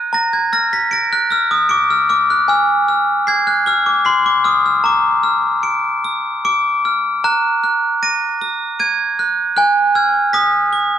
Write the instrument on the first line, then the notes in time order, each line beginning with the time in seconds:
glockenspiel
Already playing: F#6 A#6 D#7 A#7
0.13 A#5 A#6
0.33 G#6
0.53 F6 A#6
0.73 B6
0.91 A#6 D7
1.13 F#6
1.30 F6 A#7
1.51 D#6
1.69 D6 D7
1.90 F6
2.09 D6 F6
2.30 F#6
2.48 G#5 F6
2.88 F6
3.27 G#6 C7
3.47 F#6
3.66 F6 G#7
3.86 D6
4.05 C6 C7
4.26 D6
4.44 D#6 F6
4.66 F6
4.84 A#5 D6
5.23 F6
5.63 D7
6.04 A#7
6.45 D6 D7
6.85 F6
7.24 A#5 F#6
7.64 F#6
8.03 A#6 D#7
8.41 A#7
8.79 G#6 D#7
9.19 F#6
9.57 G#5 F#6
9.95 F6 G#6
10.33 D#6 B6
10.73 G#7